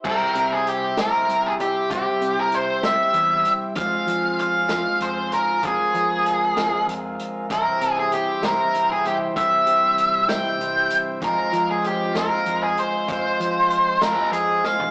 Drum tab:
CC |x-----------|------------|------------|------------|
HH |--x-x-x-x-x-|x-x-x-x-x-x-|x-x-x-x-x-x-|x-x-x-x-x-x-|
SD |------o-----|------o-----|------o-----|------o-----|
FT |------------|------------|------------|------------|
BD |o-----------|o-----------|o-----------|o-----------|

CC |------------|------------|------------|------------|
HH |x-x-x-x-x-x-|x-x-x-x-x-x-|x-x-x-x-x-x-|x-x-x-x-x---|
SD |------o-----|------o-----|------o-----|------o---o-|
FT |------------|------------|------------|-----------o|
BD |o-----------|o-----------|o-----------|o-----------|